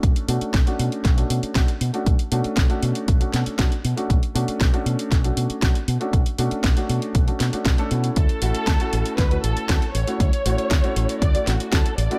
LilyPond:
<<
  \new Staff \with { instrumentName = "Violin section" } { \time 4/4 \key b \minor \tempo 4 = 118 r1 | r1 | r1 | r1 |
a'2 b'8 a'4 cis''8 | cis''2 d''8 fis'8 a'8 d''8 | }
  \new Staff \with { instrumentName = "Grand piano" } { \time 4/4 \key b \minor <a cis' d' fis'>8 <a cis' d' fis'>8. <a cis' d' fis'>4 <a cis' d' fis'>8. <a cis' d' fis'>16 r8 <a cis' d' fis'>16 | r8 <a cis' d' fis'>8. <a cis' d' fis'>4 <a cis' d' fis'>8. <a cis' d' fis'>16 r8 <a cis' d' fis'>16 | r8 <a cis' d' fis'>8. <a cis' d' fis'>4 <a cis' d' fis'>8. <a cis' d' fis'>16 r8 <a cis' d' fis'>16 | r8 <a cis' d' fis'>8. <a cis' d' fis'>4 <a cis' d' fis'>8 <a cis' d' fis'>8 <a cis' d' a'>16 <a cis' e' fis'>8~ |
<a cis' e' fis'>8 <a cis' e' fis'>8. <a cis' e' fis'>4 <a cis' e' fis'>8. <a cis' e' fis'>16 r8 <a cis' e' fis'>16 | r8 <a cis' e' fis'>8. <a cis' e' fis'>4 <a cis' e' fis'>8. <a cis' e' fis'>16 r8 <a cis' e' fis'>16 | }
  \new Staff \with { instrumentName = "Fingered electric bass" } { \clef bass \time 4/4 \key b \minor b,,8 b,8 b,,8 b,8 b,,8 b,8 b,,8 b,8 | b,,8 b,8 b,,8 b,8 b,,8 b,8 b,,8 b,8 | b,,8 b,8 b,,8 b,8 b,,8 b,8 b,,8 b,8 | b,,8 b,8 b,,8 b,8 b,,8 b,8 b,,8 b,8 |
d,8 a,,8 d,8 a,,8 d,8 a,,8 d,8 a,,8 | d,8 a,,8 d,8 a,,8 d,8 a,,8 d,8 a,,8 | }
  \new DrumStaff \with { instrumentName = "Drums" } \drummode { \time 4/4 <hh bd>16 hh16 hho16 hh16 <hh bd sn>16 hh16 hho16 hh16 <hh bd sn>16 hh16 hho16 hh16 <hh bd sn>16 hh16 hho16 hh16 | <hh bd>16 hh16 hho16 hh16 <hh bd sn>16 hh16 hho16 hh16 <hh bd>16 hh16 <hho sn>16 hh16 <hh bd sn>16 hh16 hho16 hh16 | <hh bd>16 hh16 hho16 hh16 <hh bd sn>16 hh16 hho16 hh16 <hh bd sn>16 hh16 hho16 hh16 <hh bd sn>16 hh16 hho16 hh16 | <hh bd>16 hh16 hho16 hh16 <hh bd sn>16 hh16 hho16 hh16 <hh bd>16 hh16 <hho sn>16 hh16 <hh bd sn>16 hh16 hho16 hh16 |
<hh bd>16 hh16 hho16 hh16 <hh bd sn>16 hh16 hho16 hh16 <hh bd sn>16 hh16 hho16 hh16 <hh bd sn>16 hh16 hho16 hh16 | <hh bd>16 hh16 hho16 hh16 <hh bd sn>16 hh16 hho16 hh16 <hh bd>16 hh16 <hho sn>16 hh16 <hh bd sn>16 hh16 hho16 hh16 | }
>>